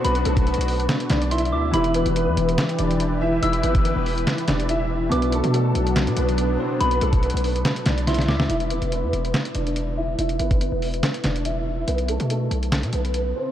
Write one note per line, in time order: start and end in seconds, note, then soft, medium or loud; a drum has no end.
0.00 1.79 B2 medium
0.00 1.69 B3 medium
0.00 1.70 B3 medium
0.00 1.70 D4 medium
0.00 1.70 F#4 loud
0.00 1.71 F#4 medium
0.04 0.25 B1 loud
0.04 0.24 B3 medium
0.04 0.24 B4 medium
0.04 1.27 B5 loud
0.04 closed hi-hat medium
0.15 closed hi-hat medium
0.25 0.57 B1 loud
0.25 0.46 A3 medium
0.25 0.45 A4 medium
0.25 closed hi-hat medium
0.37 kick loud
0.37 closed hi-hat medium
0.47 0.87 B3 medium
0.47 0.87 B4 medium
0.47 closed hi-hat soft
0.54 closed hi-hat medium
0.58 0.88 B1 loud
0.58 closed hi-hat medium
0.68 open hi-hat medium
0.80 closed hi-hat medium
0.89 snare loud
0.89 clap loud
0.89 closed hi-hat medium
1.00 closed hi-hat medium
1.10 1.54 B1 loud
1.10 1.30 D4 medium
1.10 1.30 D5 medium
1.10 snare loud
1.10 clap medium
1.10 closed hi-hat medium
1.22 closed hi-hat medium
1.31 1.51 E4 medium
1.31 1.51 E5 medium
1.31 1.51 C6 medium
1.31 closed hi-hat medium
1.38 closed hi-hat medium
1.45 closed hi-hat soft
1.52 1.72 D2 loud
1.52 1.73 E4 medium
1.52 1.72 E5 medium
1.52 1.72 D6 medium
1.71 2.05 E1 loud
1.71 5.17 E3 medium
1.71 5.08 E3 medium
1.71 5.07 E4 medium
1.71 5.08 E4 medium
1.71 1.94 E4 medium
1.71 5.08 G4 medium
1.71 5.08 B4 loud
1.71 1.93 E5 medium
1.71 3.39 B5 loud
1.71 closed hi-hat medium
1.77 5.09 B4 medium
1.84 closed hi-hat medium
1.94 2.15 B3 medium
1.94 2.14 B4 medium
1.94 closed hi-hat medium
2.06 2.29 E1 loud
2.06 closed hi-hat medium
2.16 2.56 B3 medium
2.16 2.56 B4 medium
2.16 closed hi-hat medium
2.27 2.36 E2 medium
2.37 2.57 E1 loud
2.37 closed hi-hat medium
2.49 closed hi-hat medium
2.58 snare loud
2.58 clap loud
2.58 closed hi-hat medium
2.69 closed hi-hat medium
2.79 3.40 E1 loud
2.79 3.19 D4 medium
2.79 3.19 D5 medium
2.79 closed hi-hat medium
2.91 closed hi-hat medium
3.00 closed hi-hat medium
3.21 3.41 E4 medium
3.21 3.41 E5 medium
3.43 3.63 E1 loud
3.43 3.63 E4 medium
3.43 3.62 E5 medium
3.43 5.08 E6 loud
3.43 closed hi-hat medium
3.53 closed hi-hat medium
3.63 3.95 G1 loud
3.63 3.84 B3 medium
3.63 3.83 B4 medium
3.63 closed hi-hat medium
3.75 kick loud
3.75 closed hi-hat medium
3.85 4.25 B3 medium
3.85 4.24 B4 medium
3.85 closed hi-hat medium
3.96 4.26 E1 loud
4.06 open hi-hat medium
4.18 closed hi-hat medium
4.27 snare loud
4.27 clap loud
4.27 closed hi-hat medium
4.38 closed hi-hat medium
4.48 5.09 E1 loud
4.48 4.68 D4 medium
4.48 4.68 D5 medium
4.48 snare loud
4.48 clap medium
4.48 closed hi-hat medium
4.60 closed hi-hat medium
4.69 4.90 E4 medium
4.69 4.89 E5 medium
4.69 closed hi-hat medium
4.91 5.11 E4 medium
4.91 5.10 E5 medium
5.09 5.43 B1 loud
5.09 8.55 B2 medium
5.09 8.46 F#3 medium
5.09 8.45 B3 medium
5.09 8.46 B3 medium
5.09 5.32 B3 medium
5.09 8.46 D4 loud
5.09 8.46 D4 medium
5.09 5.31 B4 medium
5.09 6.77 D6 loud
5.09 closed hi-hat medium
5.15 8.47 F#4 medium
5.22 closed hi-hat medium
5.32 5.53 A3 medium
5.32 5.53 A4 medium
5.32 closed hi-hat medium
5.44 5.74 B2 loud
5.44 closed hi-hat medium
5.54 5.94 A3 medium
5.54 5.94 A4 medium
5.54 closed hi-hat medium
5.75 6.09 B1 loud
5.75 closed hi-hat medium
5.87 closed hi-hat medium
5.96 snare loud
5.96 clap loud
5.96 closed hi-hat medium
6.07 6.17 B2 loud
6.07 closed hi-hat medium
6.17 6.58 B1 loud
6.17 6.58 B3 medium
6.17 6.57 B4 medium
6.17 closed hi-hat medium
6.29 closed hi-hat medium
6.38 closed hi-hat medium
6.59 6.80 C4 medium
6.59 6.79 C5 medium
6.80 7.01 B1 loud
6.80 7.01 B3 medium
6.80 7.00 B4 medium
6.80 8.03 B5 loud
6.80 closed hi-hat medium
6.91 closed hi-hat medium
7.01 7.33 B1 loud
7.01 7.22 A3 medium
7.01 7.21 A4 medium
7.01 closed hi-hat medium
7.13 kick loud
7.13 closed hi-hat medium
7.23 7.63 B3 medium
7.23 7.63 B4 medium
7.23 closed hi-hat soft
7.30 closed hi-hat medium
7.34 7.64 B1 loud
7.34 closed hi-hat medium
7.44 open hi-hat medium
7.56 closed hi-hat medium
7.65 snare loud
7.65 clap loud
7.65 closed hi-hat medium
7.76 closed hi-hat medium
7.86 8.30 B1 loud
7.86 8.07 D4 medium
7.86 8.06 D5 medium
7.86 snare loud
7.86 clap medium
7.86 closed hi-hat medium
7.98 closed hi-hat medium
8.07 8.27 E4 medium
8.07 8.27 E5 medium
8.07 8.27 C6 medium
8.07 snare medium
8.07 closed hi-hat medium
8.14 closed hi-hat medium
8.19 snare medium
8.19 closed hi-hat soft
8.28 8.49 D2 loud
8.28 8.49 E4 medium
8.28 8.48 E5 medium
8.28 8.49 D6 medium
8.28 snare medium
8.40 snare loud
8.50 8.81 E1 loud
8.50 8.70 E4 medium
8.50 8.69 E5 medium
8.50 closed hi-hat medium
8.60 closed hi-hat soft
8.70 8.91 B3 medium
8.70 8.90 B4 medium
8.70 closed hi-hat medium
8.82 9.05 E1 loud
8.82 closed hi-hat medium
8.92 9.32 B3 medium
8.92 9.32 B4 medium
8.92 closed hi-hat medium
9.03 9.12 E2 loud
9.13 9.33 E1 loud
9.13 closed hi-hat medium
9.25 closed hi-hat medium
9.34 snare loud
9.34 clap loud
9.34 closed hi-hat medium
9.45 closed hi-hat medium
9.55 10.16 E1 loud
9.55 9.95 D4 medium
9.55 9.95 D5 medium
9.55 closed hi-hat medium
9.67 closed hi-hat medium
9.76 closed hi-hat medium
9.97 10.17 E4 medium
9.97 10.17 E5 medium
10.19 10.39 E1 loud
10.19 10.39 E4 medium
10.19 10.38 E5 medium
10.19 closed hi-hat medium
10.29 closed hi-hat medium
10.39 10.71 G1 loud
10.39 10.60 B3 medium
10.39 10.59 B4 medium
10.39 closed hi-hat medium
10.51 kick medium
10.51 closed hi-hat medium
10.61 11.01 B3 medium
10.61 11.00 B4 medium
10.61 closed hi-hat medium
10.72 11.02 E1 loud
10.82 open hi-hat medium
10.94 closed hi-hat medium
11.03 snare loud
11.03 clap loud
11.03 closed hi-hat medium
11.14 closed hi-hat medium
11.24 11.85 E1 loud
11.24 11.44 D4 medium
11.24 11.44 D5 medium
11.24 snare medium
11.24 clap medium
11.24 closed hi-hat medium
11.36 closed hi-hat medium
11.45 11.66 E4 medium
11.45 11.65 E5 medium
11.45 closed hi-hat medium
11.67 11.87 E4 medium
11.67 11.87 E5 medium
11.87 12.19 B1 loud
11.87 12.08 B3 medium
11.87 12.07 B4 medium
11.87 closed hi-hat medium
11.98 closed hi-hat medium
12.08 12.29 A3 medium
12.08 12.29 A4 medium
12.08 closed hi-hat medium
12.20 12.50 B2 loud
12.20 closed hi-hat medium
12.30 12.70 A3 medium
12.30 12.70 A4 medium
12.30 closed hi-hat medium
12.51 12.85 B1 loud
12.51 closed hi-hat medium
12.63 closed hi-hat medium
12.72 snare loud
12.72 clap loud
12.72 closed hi-hat medium
12.83 12.93 B2 loud
12.83 closed hi-hat medium
12.93 13.34 B1 loud
12.93 13.34 B3 medium
12.93 13.33 B4 medium
12.93 closed hi-hat medium
13.05 closed hi-hat medium
13.14 closed hi-hat medium
13.36 13.52 C4 medium
13.36 13.52 C5 medium